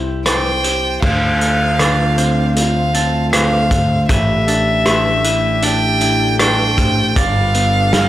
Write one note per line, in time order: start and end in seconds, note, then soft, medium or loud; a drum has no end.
0.00 0.98 C2 medium
0.00 1.02 C4 soft
0.00 1.02 E4 medium
0.00 0.63 G4 soft
0.00 0.25 C5 medium
0.00 0.26 C5 medium
0.26 1.02 C5 medium
0.26 0.64 D5 medium
0.26 0.99 G5 medium
0.26 cross-stick medium
0.26 closed hi-hat medium
0.64 1.02 G4 soft
0.64 1.02 C5 medium
0.64 closed hi-hat soft
1.02 4.05 D2 medium
1.02 2.94 D2 soft
1.02 4.07 D3 medium
1.02 7.13 A3 medium
1.02 4.07 C4 medium
1.02 4.07 D4 medium
1.02 4.07 F4 medium
1.02 1.80 C5 medium
1.02 2.52 F5 medium
1.02 kick medium
1.02 crash medium
1.41 2.54 A3 soft
1.41 closed hi-hat soft
1.79 3.70 D3 soft
1.79 2.18 D5 medium
1.79 cross-stick medium
1.79 closed hi-hat medium
2.17 2.92 C4 soft
2.17 2.94 C5 medium
2.17 closed hi-hat soft
2.55 3.31 A3 soft
2.55 3.29 F5 medium
2.55 closed hi-hat medium
2.94 4.09 C4 soft
2.94 3.32 A4 medium
2.94 closed hi-hat soft
3.33 4.09 A3 soft
3.33 4.09 C5 medium
3.33 4.06 F5 medium
3.33 cross-stick medium
3.33 closed hi-hat medium
3.71 4.09 D3 soft
3.71 kick medium
3.71 closed hi-hat medium
4.09 7.13 A1 medium
4.09 6.02 A2 soft
4.09 8.09 D4 medium
4.09 7.14 G4 medium
4.09 4.47 B4 medium
4.09 5.65 E5 medium
4.09 kick medium
4.09 closed hi-hat medium
4.48 5.61 D4 medium
4.48 5.24 A4 medium
4.48 closed hi-hat soft
4.86 6.77 A3 medium
4.86 cross-stick medium
4.86 closed hi-hat medium
5.24 6.00 E4 soft
5.24 5.63 B4 medium
5.24 closed hi-hat soft
5.62 6.38 D4 medium
5.62 6.38 A4 medium
5.62 6.40 G5 medium
5.62 closed hi-hat medium
6.01 7.16 E4 medium
6.01 closed hi-hat soft
6.39 7.16 D4 soft
6.39 6.78 A4 medium
6.39 7.19 G5 medium
6.39 cross-stick medium
6.39 closed hi-hat medium
6.78 7.16 A3 soft
6.78 7.16 C5 medium
6.78 kick medium
6.78 closed hi-hat soft
7.16 8.09 G1 medium
7.16 8.09 G2 soft
7.16 8.09 G3 medium
7.16 8.09 F4 medium
7.16 8.09 A4 medium
7.16 8.09 B4 medium
7.16 7.93 D5 medium
7.16 8.09 F5 medium
7.16 kick medium
7.16 closed hi-hat medium
7.54 8.09 B3 medium
7.54 closed hi-hat soft
7.93 8.09 G3 medium
7.93 8.09 F5 medium
7.93 snare medium
7.93 closed hi-hat medium